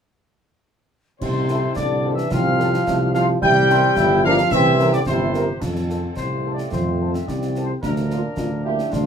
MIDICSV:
0, 0, Header, 1, 8, 480
1, 0, Start_track
1, 0, Key_signature, -1, "major"
1, 0, Tempo, 550459
1, 1060, Time_signature, 2, 2, 24, 8
1, 7902, End_track
2, 0, Start_track
2, 0, Title_t, "Piccolo"
2, 0, Program_c, 0, 72
2, 1056, Note_on_c, 0, 84, 92
2, 1504, Note_off_c, 0, 84, 0
2, 1537, Note_on_c, 0, 86, 84
2, 1836, Note_off_c, 0, 86, 0
2, 1870, Note_on_c, 0, 88, 78
2, 2014, Note_off_c, 0, 88, 0
2, 2019, Note_on_c, 0, 89, 114
2, 2704, Note_off_c, 0, 89, 0
2, 2743, Note_on_c, 0, 89, 82
2, 2796, Note_off_c, 0, 89, 0
2, 2985, Note_on_c, 0, 91, 127
2, 3668, Note_off_c, 0, 91, 0
2, 3707, Note_on_c, 0, 89, 99
2, 3944, Note_on_c, 0, 88, 117
2, 3957, Note_off_c, 0, 89, 0
2, 4304, Note_on_c, 0, 86, 101
2, 4317, Note_off_c, 0, 88, 0
2, 4422, Note_off_c, 0, 86, 0
2, 4432, Note_on_c, 0, 84, 83
2, 4873, Note_off_c, 0, 84, 0
2, 7902, End_track
3, 0, Start_track
3, 0, Title_t, "Trumpet section"
3, 0, Program_c, 1, 61
3, 1051, Note_on_c, 1, 72, 92
3, 1502, Note_off_c, 1, 72, 0
3, 1528, Note_on_c, 1, 74, 90
3, 1831, Note_off_c, 1, 74, 0
3, 1864, Note_on_c, 1, 76, 89
3, 2022, Note_off_c, 1, 76, 0
3, 2026, Note_on_c, 1, 77, 104
3, 2727, Note_off_c, 1, 77, 0
3, 2737, Note_on_c, 1, 77, 100
3, 2846, Note_off_c, 1, 77, 0
3, 2985, Note_on_c, 1, 79, 122
3, 3667, Note_off_c, 1, 79, 0
3, 3701, Note_on_c, 1, 77, 115
3, 3924, Note_off_c, 1, 77, 0
3, 3936, Note_on_c, 1, 76, 120
3, 4272, Note_off_c, 1, 76, 0
3, 4306, Note_on_c, 1, 74, 107
3, 4359, Note_off_c, 1, 74, 0
3, 4420, Note_on_c, 1, 69, 92
3, 4420, Note_on_c, 1, 72, 102
3, 4717, Note_off_c, 1, 69, 0
3, 4742, Note_on_c, 1, 67, 72
3, 4867, Note_off_c, 1, 72, 0
3, 4892, Note_on_c, 1, 69, 77
3, 4901, Note_off_c, 1, 67, 0
3, 5376, Note_off_c, 1, 69, 0
3, 5377, Note_on_c, 1, 72, 77
3, 5676, Note_off_c, 1, 72, 0
3, 5702, Note_on_c, 1, 74, 67
3, 5850, Note_off_c, 1, 74, 0
3, 5859, Note_on_c, 1, 72, 69
3, 6195, Note_off_c, 1, 72, 0
3, 6229, Note_on_c, 1, 76, 73
3, 6344, Note_on_c, 1, 74, 68
3, 6345, Note_off_c, 1, 76, 0
3, 6663, Note_off_c, 1, 74, 0
3, 6665, Note_on_c, 1, 72, 77
3, 6736, Note_off_c, 1, 72, 0
3, 6819, Note_on_c, 1, 70, 85
3, 7506, Note_off_c, 1, 70, 0
3, 7538, Note_on_c, 1, 67, 81
3, 7763, Note_off_c, 1, 67, 0
3, 7779, Note_on_c, 1, 65, 70
3, 7902, Note_off_c, 1, 65, 0
3, 7902, End_track
4, 0, Start_track
4, 0, Title_t, "French horn section"
4, 0, Program_c, 2, 60
4, 1296, Note_on_c, 2, 65, 59
4, 1300, Note_on_c, 2, 69, 58
4, 1302, Note_on_c, 2, 60, 61
4, 1383, Note_off_c, 2, 65, 0
4, 1386, Note_off_c, 2, 69, 0
4, 1388, Note_off_c, 2, 60, 0
4, 1785, Note_on_c, 2, 69, 60
4, 1787, Note_on_c, 2, 60, 62
4, 1788, Note_on_c, 2, 65, 62
4, 1870, Note_off_c, 2, 69, 0
4, 1872, Note_off_c, 2, 60, 0
4, 1872, Note_off_c, 2, 65, 0
4, 2252, Note_on_c, 2, 69, 69
4, 2256, Note_on_c, 2, 65, 63
4, 2257, Note_on_c, 2, 60, 71
4, 2340, Note_off_c, 2, 69, 0
4, 2343, Note_off_c, 2, 65, 0
4, 2344, Note_off_c, 2, 60, 0
4, 2745, Note_on_c, 2, 69, 71
4, 2747, Note_on_c, 2, 65, 68
4, 2752, Note_on_c, 2, 60, 71
4, 2830, Note_off_c, 2, 69, 0
4, 2832, Note_off_c, 2, 65, 0
4, 2836, Note_off_c, 2, 60, 0
4, 3225, Note_on_c, 2, 70, 71
4, 3226, Note_on_c, 2, 60, 81
4, 3227, Note_on_c, 2, 64, 81
4, 3310, Note_off_c, 2, 70, 0
4, 3311, Note_off_c, 2, 60, 0
4, 3311, Note_off_c, 2, 64, 0
4, 3705, Note_on_c, 2, 64, 88
4, 3707, Note_on_c, 2, 70, 88
4, 3709, Note_on_c, 2, 60, 85
4, 3790, Note_off_c, 2, 64, 0
4, 3792, Note_off_c, 2, 70, 0
4, 3793, Note_off_c, 2, 60, 0
4, 4180, Note_on_c, 2, 70, 77
4, 4183, Note_on_c, 2, 60, 73
4, 4184, Note_on_c, 2, 64, 80
4, 4267, Note_off_c, 2, 70, 0
4, 4269, Note_off_c, 2, 60, 0
4, 4269, Note_off_c, 2, 64, 0
4, 4654, Note_on_c, 2, 64, 67
4, 4657, Note_on_c, 2, 60, 69
4, 4657, Note_on_c, 2, 70, 67
4, 4742, Note_off_c, 2, 64, 0
4, 4744, Note_off_c, 2, 60, 0
4, 4744, Note_off_c, 2, 70, 0
4, 5142, Note_on_c, 2, 60, 46
4, 5146, Note_on_c, 2, 65, 48
4, 5146, Note_on_c, 2, 69, 46
4, 5228, Note_off_c, 2, 60, 0
4, 5231, Note_off_c, 2, 65, 0
4, 5231, Note_off_c, 2, 69, 0
4, 5628, Note_on_c, 2, 65, 50
4, 5631, Note_on_c, 2, 60, 46
4, 5631, Note_on_c, 2, 69, 48
4, 5712, Note_off_c, 2, 65, 0
4, 5715, Note_off_c, 2, 60, 0
4, 5715, Note_off_c, 2, 69, 0
4, 6111, Note_on_c, 2, 69, 48
4, 6114, Note_on_c, 2, 60, 49
4, 6114, Note_on_c, 2, 65, 46
4, 6195, Note_off_c, 2, 69, 0
4, 6197, Note_off_c, 2, 60, 0
4, 6198, Note_off_c, 2, 65, 0
4, 6594, Note_on_c, 2, 60, 51
4, 6595, Note_on_c, 2, 69, 53
4, 6596, Note_on_c, 2, 65, 52
4, 6677, Note_off_c, 2, 60, 0
4, 6678, Note_off_c, 2, 69, 0
4, 6679, Note_off_c, 2, 65, 0
4, 7071, Note_on_c, 2, 65, 52
4, 7072, Note_off_c, 2, 65, 0
4, 7072, Note_on_c, 2, 65, 49
4, 7074, Note_on_c, 2, 58, 51
4, 7156, Note_off_c, 2, 65, 0
4, 7158, Note_off_c, 2, 58, 0
4, 7547, Note_on_c, 2, 65, 57
4, 7550, Note_on_c, 2, 58, 54
4, 7555, Note_off_c, 2, 65, 0
4, 7555, Note_on_c, 2, 65, 55
4, 7635, Note_off_c, 2, 58, 0
4, 7639, Note_off_c, 2, 65, 0
4, 7902, End_track
5, 0, Start_track
5, 0, Title_t, "Trombone section"
5, 0, Program_c, 3, 61
5, 1059, Note_on_c, 3, 60, 72
5, 1167, Note_off_c, 3, 60, 0
5, 1313, Note_on_c, 3, 64, 69
5, 1530, Note_off_c, 3, 64, 0
5, 1550, Note_on_c, 3, 62, 71
5, 2020, Note_on_c, 3, 60, 75
5, 2025, Note_off_c, 3, 62, 0
5, 2466, Note_off_c, 3, 60, 0
5, 2491, Note_on_c, 3, 57, 85
5, 2601, Note_off_c, 3, 57, 0
5, 2749, Note_on_c, 3, 65, 85
5, 2855, Note_off_c, 3, 65, 0
5, 2971, Note_on_c, 3, 64, 89
5, 3081, Note_off_c, 3, 64, 0
5, 3226, Note_on_c, 3, 60, 88
5, 3446, Note_off_c, 3, 60, 0
5, 3461, Note_on_c, 3, 64, 104
5, 3684, Note_off_c, 3, 64, 0
5, 3708, Note_on_c, 3, 62, 100
5, 3814, Note_off_c, 3, 62, 0
5, 3944, Note_on_c, 3, 60, 104
5, 4388, Note_off_c, 3, 60, 0
5, 4441, Note_on_c, 3, 64, 94
5, 4671, Note_off_c, 3, 64, 0
5, 4906, Note_on_c, 3, 53, 59
5, 4906, Note_on_c, 3, 60, 57
5, 6789, Note_off_c, 3, 60, 0
5, 6790, Note_off_c, 3, 53, 0
5, 6827, Note_on_c, 3, 53, 58
5, 6833, Note_on_c, 3, 62, 63
5, 7902, Note_off_c, 3, 53, 0
5, 7902, Note_off_c, 3, 62, 0
5, 7902, End_track
6, 0, Start_track
6, 0, Title_t, "Euphonium"
6, 0, Program_c, 4, 58
6, 1058, Note_on_c, 4, 48, 79
6, 1540, Note_on_c, 4, 50, 80
6, 1553, Note_off_c, 4, 48, 0
6, 1859, Note_on_c, 4, 52, 87
6, 1872, Note_off_c, 4, 50, 0
6, 2017, Note_on_c, 4, 53, 102
6, 2030, Note_off_c, 4, 52, 0
6, 2729, Note_off_c, 4, 53, 0
6, 2734, Note_on_c, 4, 53, 96
6, 2960, Note_off_c, 4, 53, 0
6, 2974, Note_on_c, 4, 55, 122
6, 3694, Note_on_c, 4, 53, 105
6, 3707, Note_off_c, 4, 55, 0
6, 3937, Note_on_c, 4, 52, 117
6, 3950, Note_off_c, 4, 53, 0
6, 4298, Note_off_c, 4, 52, 0
6, 4307, Note_on_c, 4, 50, 94
6, 4360, Note_off_c, 4, 50, 0
6, 4423, Note_on_c, 4, 48, 88
6, 4868, Note_off_c, 4, 48, 0
6, 5372, Note_on_c, 4, 57, 60
6, 6302, Note_off_c, 4, 57, 0
6, 6334, Note_on_c, 4, 60, 60
6, 6784, Note_off_c, 4, 60, 0
6, 6826, Note_on_c, 4, 62, 62
6, 7271, Note_off_c, 4, 62, 0
6, 7298, Note_on_c, 4, 65, 69
6, 7407, Note_off_c, 4, 65, 0
6, 7542, Note_on_c, 4, 64, 70
6, 7765, Note_off_c, 4, 64, 0
6, 7790, Note_on_c, 4, 62, 78
6, 7902, Note_off_c, 4, 62, 0
6, 7902, End_track
7, 0, Start_track
7, 0, Title_t, "Tuba"
7, 0, Program_c, 5, 58
7, 1055, Note_on_c, 5, 36, 80
7, 1457, Note_off_c, 5, 36, 0
7, 1538, Note_on_c, 5, 36, 71
7, 1939, Note_off_c, 5, 36, 0
7, 2022, Note_on_c, 5, 36, 87
7, 2421, Note_off_c, 5, 36, 0
7, 2505, Note_on_c, 5, 36, 87
7, 2902, Note_off_c, 5, 36, 0
7, 2987, Note_on_c, 5, 36, 93
7, 3383, Note_off_c, 5, 36, 0
7, 3457, Note_on_c, 5, 31, 97
7, 3858, Note_off_c, 5, 31, 0
7, 3944, Note_on_c, 5, 36, 103
7, 4342, Note_off_c, 5, 36, 0
7, 4413, Note_on_c, 5, 31, 86
7, 4816, Note_off_c, 5, 31, 0
7, 4897, Note_on_c, 5, 41, 61
7, 5299, Note_off_c, 5, 41, 0
7, 5380, Note_on_c, 5, 36, 53
7, 5780, Note_off_c, 5, 36, 0
7, 5854, Note_on_c, 5, 41, 62
7, 6257, Note_off_c, 5, 41, 0
7, 6333, Note_on_c, 5, 36, 59
7, 6737, Note_off_c, 5, 36, 0
7, 6823, Note_on_c, 5, 38, 72
7, 7179, Note_off_c, 5, 38, 0
7, 7299, Note_on_c, 5, 38, 58
7, 7700, Note_off_c, 5, 38, 0
7, 7778, Note_on_c, 5, 38, 75
7, 7902, Note_off_c, 5, 38, 0
7, 7902, End_track
8, 0, Start_track
8, 0, Title_t, "Drums"
8, 1060, Note_on_c, 9, 35, 82
8, 1060, Note_on_c, 9, 49, 50
8, 1148, Note_off_c, 9, 35, 0
8, 1148, Note_off_c, 9, 49, 0
8, 1293, Note_on_c, 9, 38, 51
8, 1380, Note_off_c, 9, 38, 0
8, 1539, Note_on_c, 9, 35, 72
8, 1539, Note_on_c, 9, 38, 72
8, 1626, Note_off_c, 9, 35, 0
8, 1626, Note_off_c, 9, 38, 0
8, 1901, Note_on_c, 9, 38, 53
8, 1988, Note_off_c, 9, 38, 0
8, 2018, Note_on_c, 9, 35, 86
8, 2018, Note_on_c, 9, 38, 80
8, 2105, Note_off_c, 9, 35, 0
8, 2105, Note_off_c, 9, 38, 0
8, 2265, Note_on_c, 9, 38, 50
8, 2353, Note_off_c, 9, 38, 0
8, 2389, Note_on_c, 9, 38, 55
8, 2476, Note_off_c, 9, 38, 0
8, 2506, Note_on_c, 9, 35, 70
8, 2506, Note_on_c, 9, 38, 73
8, 2593, Note_off_c, 9, 35, 0
8, 2593, Note_off_c, 9, 38, 0
8, 2744, Note_on_c, 9, 38, 57
8, 2831, Note_off_c, 9, 38, 0
8, 2981, Note_on_c, 9, 35, 88
8, 3068, Note_off_c, 9, 35, 0
8, 3223, Note_on_c, 9, 38, 58
8, 3310, Note_off_c, 9, 38, 0
8, 3457, Note_on_c, 9, 35, 75
8, 3457, Note_on_c, 9, 38, 76
8, 3544, Note_off_c, 9, 35, 0
8, 3544, Note_off_c, 9, 38, 0
8, 3817, Note_on_c, 9, 38, 65
8, 3904, Note_off_c, 9, 38, 0
8, 3934, Note_on_c, 9, 35, 93
8, 3934, Note_on_c, 9, 38, 81
8, 4022, Note_off_c, 9, 35, 0
8, 4022, Note_off_c, 9, 38, 0
8, 4181, Note_on_c, 9, 38, 60
8, 4268, Note_off_c, 9, 38, 0
8, 4297, Note_on_c, 9, 38, 61
8, 4385, Note_off_c, 9, 38, 0
8, 4415, Note_on_c, 9, 35, 72
8, 4415, Note_on_c, 9, 38, 71
8, 4502, Note_off_c, 9, 35, 0
8, 4502, Note_off_c, 9, 38, 0
8, 4659, Note_on_c, 9, 38, 52
8, 4746, Note_off_c, 9, 38, 0
8, 4897, Note_on_c, 9, 35, 71
8, 4897, Note_on_c, 9, 38, 67
8, 4897, Note_on_c, 9, 49, 42
8, 4985, Note_off_c, 9, 35, 0
8, 4985, Note_off_c, 9, 38, 0
8, 4985, Note_off_c, 9, 49, 0
8, 5019, Note_on_c, 9, 38, 41
8, 5106, Note_off_c, 9, 38, 0
8, 5143, Note_on_c, 9, 38, 45
8, 5230, Note_off_c, 9, 38, 0
8, 5379, Note_on_c, 9, 35, 59
8, 5379, Note_on_c, 9, 38, 57
8, 5466, Note_off_c, 9, 35, 0
8, 5466, Note_off_c, 9, 38, 0
8, 5741, Note_on_c, 9, 38, 48
8, 5828, Note_off_c, 9, 38, 0
8, 5863, Note_on_c, 9, 35, 72
8, 5863, Note_on_c, 9, 38, 62
8, 5950, Note_off_c, 9, 35, 0
8, 5950, Note_off_c, 9, 38, 0
8, 6230, Note_on_c, 9, 38, 53
8, 6317, Note_off_c, 9, 38, 0
8, 6352, Note_on_c, 9, 35, 60
8, 6352, Note_on_c, 9, 38, 58
8, 6439, Note_off_c, 9, 35, 0
8, 6439, Note_off_c, 9, 38, 0
8, 6469, Note_on_c, 9, 38, 44
8, 6557, Note_off_c, 9, 38, 0
8, 6587, Note_on_c, 9, 38, 45
8, 6674, Note_off_c, 9, 38, 0
8, 6826, Note_on_c, 9, 35, 75
8, 6826, Note_on_c, 9, 38, 67
8, 6913, Note_off_c, 9, 35, 0
8, 6913, Note_off_c, 9, 38, 0
8, 6944, Note_on_c, 9, 38, 45
8, 7031, Note_off_c, 9, 38, 0
8, 7068, Note_on_c, 9, 38, 47
8, 7155, Note_off_c, 9, 38, 0
8, 7299, Note_on_c, 9, 35, 63
8, 7299, Note_on_c, 9, 38, 68
8, 7387, Note_off_c, 9, 35, 0
8, 7387, Note_off_c, 9, 38, 0
8, 7664, Note_on_c, 9, 38, 54
8, 7751, Note_off_c, 9, 38, 0
8, 7786, Note_on_c, 9, 35, 75
8, 7786, Note_on_c, 9, 38, 68
8, 7873, Note_off_c, 9, 35, 0
8, 7873, Note_off_c, 9, 38, 0
8, 7902, End_track
0, 0, End_of_file